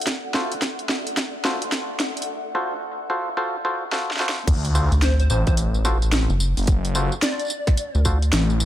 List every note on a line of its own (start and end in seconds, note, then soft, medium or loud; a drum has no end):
0.00 2.27 A4 medium
0.00 2.27 D5 medium
0.00 2.28 E5 medium
0.00 2.28 F#5 medium
0.00 closed hi-hat medium
0.07 kick loud
0.07 snare medium
0.07 closed hi-hat medium
0.34 0.54 F4 medium
0.34 0.54 F#4 medium
0.34 0.54 A4 medium
0.34 0.54 C5 medium
0.34 snare medium
0.52 closed hi-hat medium
0.62 kick loud
0.62 snare medium
0.62 closed hi-hat medium
0.79 closed hi-hat soft
0.89 snare medium
1.07 closed hi-hat medium
1.17 kick medium
1.17 snare medium
1.17 closed hi-hat medium
1.45 1.64 F4 medium
1.45 1.64 F#4 medium
1.45 1.64 A4 medium
1.45 1.64 C5 medium
1.45 snare medium
1.62 closed hi-hat medium
1.72 kick loud
1.72 snare medium
1.72 closed hi-hat medium
2.00 snare medium
2.00 closed hi-hat medium
2.17 closed hi-hat soft
2.22 closed hi-hat medium
2.55 2.74 F4 medium
2.55 2.74 F#4 medium
2.55 2.74 A4 medium
2.55 2.74 C5 medium
3.10 3.29 F4 medium
3.10 3.29 F#4 medium
3.10 3.29 A4 medium
3.10 3.29 C5 medium
3.37 3.56 F4 medium
3.37 3.56 F#4 medium
3.37 3.56 A4 medium
3.37 3.56 C5 loud
3.65 3.84 F4 medium
3.65 3.84 F#4 medium
3.65 3.84 A4 medium
3.65 3.84 C5 loud
3.92 4.11 F4 medium
3.92 4.11 F#4 medium
3.92 4.11 A4 medium
3.92 4.11 C5 loud
3.92 snare medium
4.11 snare soft
4.17 4.39 F4 medium
4.17 4.39 F#4 medium
4.17 4.39 A4 medium
4.17 4.39 C5 loud
4.17 snare soft
4.20 snare medium
4.29 snare loud
4.47 4.89 D2 medium
4.47 kick loud
4.47 closed hi-hat medium
4.47 crash loud
4.47 tambourine soft
4.47 sub drop medium
4.65 closed hi-hat medium
4.65 tambourine soft
4.75 4.94 F4 medium
4.75 4.94 F#4 medium
4.75 4.94 A4 medium
4.75 4.94 C5 medium
4.75 tambourine medium
4.92 5.28 D2 medium
4.92 closed hi-hat soft
4.92 tambourine soft
5.02 5.13 C5 medium
5.02 snare loud
5.02 closed hi-hat medium
5.02 tambourine soft
5.20 5.27 C5 medium
5.20 closed hi-hat soft
5.20 tambourine soft
5.30 5.44 A1 loud
5.30 5.41 C5 medium
5.30 tambourine medium
5.47 6.27 A1 loud
5.47 5.54 C5 medium
5.47 kick loud
5.47 closed hi-hat medium
5.47 tambourine soft
5.57 closed hi-hat medium
5.57 tambourine soft
5.74 tambourine soft
5.85 5.98 F4 medium
5.85 5.98 F#4 medium
5.85 5.98 A4 medium
5.85 5.98 C5 loud
5.85 snare medium
5.85 tambourine medium
6.02 closed hi-hat soft
6.02 tambourine soft
6.13 snare loud
6.13 closed hi-hat medium
6.13 tambourine soft
6.29 6.54 F#1 loud
6.29 tambourine soft
6.40 tambourine medium
6.57 7.10 F#1 loud
6.57 closed hi-hat soft
6.57 tambourine soft
6.59 closed hi-hat soft
6.63 closed hi-hat soft
6.64 closed hi-hat soft
6.66 kick loud
6.66 closed hi-hat soft
6.66 closed hi-hat medium
6.66 tambourine soft
6.85 closed hi-hat medium
6.85 tambourine soft
6.95 7.14 F4 medium
6.95 7.14 F#4 medium
6.95 7.14 A4 medium
6.95 7.15 C5 medium
6.95 tambourine medium
7.12 tambourine soft
7.22 8.01 D5 medium
7.22 snare loud
7.22 closed hi-hat medium
7.22 tambourine soft
7.39 closed hi-hat soft
7.39 tambourine soft
7.45 tambourine soft
7.46 tambourine soft
7.48 tambourine soft
7.50 tambourine medium
7.67 kick loud
7.67 snare medium
7.67 closed hi-hat medium
7.67 tambourine soft
7.77 closed hi-hat medium
7.77 tambourine soft
7.95 8.31 D2 loud
7.95 tambourine soft
8.05 8.18 F4 medium
8.05 8.18 F#4 medium
8.05 8.18 A4 medium
8.05 8.18 C5 loud
8.05 kick medium
8.05 tambourine medium
8.22 closed hi-hat soft
8.22 tambourine soft
8.33 8.65 A1 loud
8.33 snare loud
8.33 closed hi-hat medium
8.33 tambourine soft
8.50 tambourine soft
8.60 tambourine medium